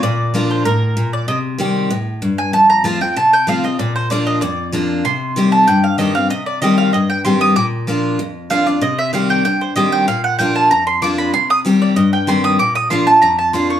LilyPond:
<<
  \new Staff \with { instrumentName = "Mandolin" } { \time 4/4 \key c \dorian \tempo 4 = 191 d''4. c''8 bes'4. d''8 | ees''8 r2. aes''8 | a''8 bes''8 a''8 g''8 a''8 g''8 f''8 ees''8 | d''8 c''8 d''8 ees''8 d''4 r4 |
c'''4. a''8 g''8 f''8 ees''8 f''8 | ees''8 d''8 ees''8 f''8 ees''8 g''8 c'''8 ees'''8 | d'''8 r2 r8 f''8 d''8 | ees''8 e''8 f''8 g''8 g''8 c''8 ees''8 g''8 |
f''8 fis''8 g''8 a''8 bes''8 c'''8 d'''8 b''8 | c'''8 ees'''8 r8 d''8 ees''8 g''8 c'''8 ees'''8 | d'''8 ees'''8 c'''8 a''8 bes''8 a''8 c'''8 des'''8 | }
  \new Staff \with { instrumentName = "Steel-string acoustic guitar" } { \time 4/4 \key c \dorian << { r4 <f bes d' f'>4 r2 | r4 <ees g c' g'>4 r2 | r4 <f a c' f'>8 <c' f'>8 r4 <f a c' f'>8 <c' f'>8 | r4 <f bes d' f'>4 r4 <f bes d' f'>4 |
r4 <ees g c' g'>4 r4 <ees g c' g'>8 <c' g'>8 | r4 <ees g c' g'>4 r4 <ees g c' g'>4 | r4 <f bes d' f'>4 r4 <f bes d' f'>8 <d' f'>8 | r4 <ees g c' g'>4 r4 <ees g c' g'>4 |
r4 <f bes d' f'>4 r4 <f bes d' f'>4 | r4 <ees g c' g'>4 r4 <ees g c' g'>4 | r4 <f bes d' f'>8 <d' f'>8 r4 <f bes d' f'>4 | } \\ { bes,2 a,4 bes,4 | c2 a,4 g,4 | f,2 c2 | bes,2 f,2 |
c2 g,2 | c2 g,2 | bes,2 f,2 | c2 g,2 |
bes,2 f,2 | c2 g,2 | bes,2 f,2 | } >> }
>>